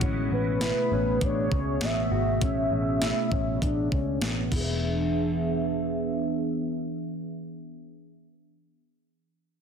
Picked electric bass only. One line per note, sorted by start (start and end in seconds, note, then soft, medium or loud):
0.01 0.28 A1 medium
0.31 0.71 A1 medium
0.92 1.18 A1 medium
1.21 1.48 A1 medium
1.51 1.78 C#2 medium
1.82 2.08 A1 medium
2.11 2.38 G#1 medium
2.41 2.68 A1 medium
2.71 3.11 A1 medium
3.31 3.58 A1 medium
3.62 3.88 A1 medium
3.92 4.18 C#2 medium
4.21 4.48 A1 medium
4.52 8.23 E1 medium